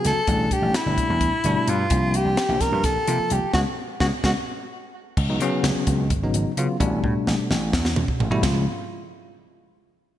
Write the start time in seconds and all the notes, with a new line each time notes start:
Already playing: C#3 F#3 B3 F#4
0.05 C#2 A4, snare, closed hi-hat
0.17 muted slap bass stroke
0.27 A1 B2 G3 A3 D4, kick, closed hi-hat
0.51 G4, kick, closed hi-hat
0.62 A1
0.74 E4, snare, closed hi-hat
0.86 G1 B2 G3 A3 D4
0.98 kick, closed hi-hat
1.10 E2
1.21 kick, closed hi-hat
1.44 G1 B2 G3 A3 D4, closed hi-hat
1.67 G2 F4, closed hi-hat
1.90 C2 C3 F3 A#3 D4, kick, closed hi-hat
2.14 G4, closed hi-hat
2.25 C2
2.37 snare, closed hi-hat
2.49 A#1 C3 F3 A#3 D4
2.61 A#4, muted slap bass stroke, kick, snare, closed hi-hat
2.72 G2
2.84 A4, kick, snare, closed hi-hat
2.96 muted slap bass stroke
3.08 C3 F3 A#3 F4, closed hi-hat
3.20 muted slap bass stroke
3.30 C2 G4, closed hi-hat
3.53 C#2 G#3 B3 C#4 F#4, kick, snare
4.00 C#2 G#3 B3 C#4 F#4, kick, snare
4.24 C#2 G#3 B3 C#4 F#4, kick, snare
5.17 C#2, kick, crash
5.29 C#3 F#3 B3 D#4
5.40 C#3 F#3 B3 C#4, closed hi-hat
5.63 C#2, snare, closed hi-hat
5.75 muted slap bass stroke
5.87 C#2, kick, closed hi-hat
6.10 G#1, kick, closed hi-hat
6.23 C#3 F#3 B3 D#4
6.34 G#1, closed hi-hat
6.46 muted slap bass stroke
6.57 C#3 F#3 B3 F4, closed hi-hat
6.80 A1 B2 G3 A3 D4, kick, closed hi-hat
7.03 A2, kick
7.27 A1, snare
7.39 muted slap bass stroke
7.50 A1, snare
7.73 E2, kick, snare
7.85 snare
7.96 E2, mid tom
8.08 muted slap bass stroke, kick
8.20 A1, floor tom
8.30 B2 G3 A3 E4, floor tom
8.43 C#2 C#3 F3 G#3 F4, kick, snare, ride bell